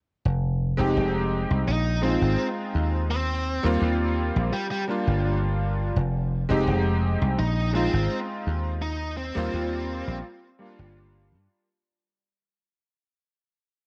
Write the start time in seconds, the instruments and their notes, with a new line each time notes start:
0.25 slap bass F1
0.77 slap bass F1, electric grand piano G#3 C4 D#4 G4
0.96 slap bass F1
1.51 slap bass C2
1.68 slap bass A#1, lead electric guitar D#4
2.02 electric grand piano G#3 C4 D#4 F4, lead electric guitar C4
2.22 slap bass G#1
2.75 slap bass D#2
3.11 lead electric guitar C4
3.63 slap bass D#2, electric grand piano G3 A#3 C4 F4
3.82 slap bass D#2
4.36 slap bass A#1
4.53 lead electric guitar G3
4.71 lead electric guitar G3
4.88 electric grand piano G3 A#3 D4 F4
5.07 slap bass G1
5.96 slap bass F1
6.49 slap bass F1, electric grand piano G#3 C4 D#4 G4
6.67 slap bass F1
7.22 slap bass C2
7.39 slap bass A#1, lead electric guitar D#4
7.73 electric grand piano G#3 C4 D#4 F4, lead electric guitar C4
7.93 slap bass G#1
8.47 slap bass D#2
8.82 lead electric guitar D#4
9.17 lead electric guitar C4
9.35 slap bass D#2, electric grand piano G3 A#3 C4 F4
9.54 slap bass D#2
10.07 slap bass A#1
10.59 electric grand piano G3 A#3 D4 F4
10.79 slap bass G1
11.32 slap bass G2